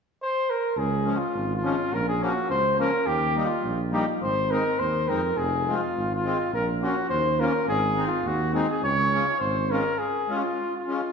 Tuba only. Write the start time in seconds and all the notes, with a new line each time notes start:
0.77 C#2
1.34 G#1
1.93 A#1
2.50 C#2
3.06 D#2
3.64 A#1
4.21 G#1
4.80 D#2
5.10 F2
5.37 F1
5.96 G#1
6.53 A#1
7.11 D#2
7.67 G#1
8.24 D#2
8.82 C#2
9.41 G#1